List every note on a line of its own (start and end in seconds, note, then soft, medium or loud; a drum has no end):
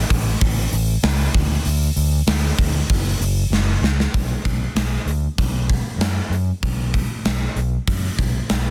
0.10 0.32 A1 medium
0.10 kick medium
0.10 open hi-hat medium
0.41 0.64 A1 loud
0.41 kick loud
0.41 open hi-hat medium
0.72 0.94 A1 medium
0.72 open hi-hat medium
1.03 1.25 C#2 medium
1.03 snare loud
1.03 open hi-hat medium
1.34 1.56 D2 medium
1.34 kick loud
1.34 open hi-hat medium
1.65 1.88 D2 loud
1.65 open hi-hat medium
1.96 2.19 D2 medium
1.96 open hi-hat medium
2.27 2.49 D2 medium
2.27 snare loud
2.27 open hi-hat medium
2.58 2.81 D2 medium
2.58 kick medium
2.58 open hi-hat medium
2.90 3.12 F#1 medium
2.90 kick loud
2.90 open hi-hat medium
3.20 3.43 F#1 medium
3.20 open hi-hat medium
3.50 3.73 F#1 medium
3.50 snare medium
3.82 4.04 C#2 medium
3.82 snare medium
4.00 snare medium
4.14 4.33 B1 medium
4.14 kick medium
4.14 open hi-hat medium
4.45 4.64 B1 medium
4.45 kick medium
4.45 open hi-hat soft
4.75 4.95 B1 medium
4.75 snare loud
4.75 open hi-hat medium
5.05 5.25 D2 medium
5.05 open hi-hat soft
5.38 5.77 B1 medium
5.38 kick loud
5.38 open hi-hat medium
5.70 kick medium
5.70 open hi-hat soft
5.98 6.18 F#2 medium
5.98 snare loud
5.98 open hi-hat medium
6.30 6.50 F#2 medium
6.30 open hi-hat soft
6.63 7.01 B1 medium
6.63 kick loud
6.63 open hi-hat medium
6.94 kick medium
6.94 open hi-hat soft
7.25 7.44 B1 medium
7.25 snare loud
7.25 open hi-hat medium
7.56 7.75 B1 medium
7.56 open hi-hat soft
7.87 8.07 F#2 medium
7.87 kick loud
7.87 open hi-hat medium
8.19 8.38 B1 medium
8.19 kick medium
8.19 open hi-hat medium
8.49 8.69 B1 medium
8.49 snare loud
8.49 open hi-hat medium